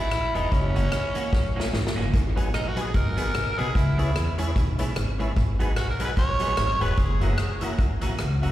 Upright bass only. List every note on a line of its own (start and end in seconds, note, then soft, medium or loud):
0.00 0.11 G#1 medium
0.11 0.31 A#1 loud
0.35 0.49 E1 medium
0.52 0.86 F#1 loud
0.92 1.27 G#1 medium
1.33 1.67 A#1 loud
1.73 1.93 G#1 loud
1.97 2.11 F#1 medium
2.14 2.48 G#1 loud
2.54 2.96 A#1 medium
2.95 3.29 G#1 medium
3.35 3.55 B1 medium
3.58 3.75 B1 medium
3.75 4.16 C#2 loud
4.16 4.50 E2 medium
4.56 4.90 B1 loud
4.97 5.31 G#1 medium
5.37 5.71 G#1 loud
5.77 6.12 B1 medium
6.17 6.52 A#1 medium
6.58 6.78 G#1 loud
6.81 6.96 E1 medium
6.98 7.32 F#1 loud
7.39 7.73 E1 medium
7.79 7.99 G#1 medium
8.03 8.17 A#1 medium
8.20 8.40 C#2 loud
8.43 8.52 F#1 medium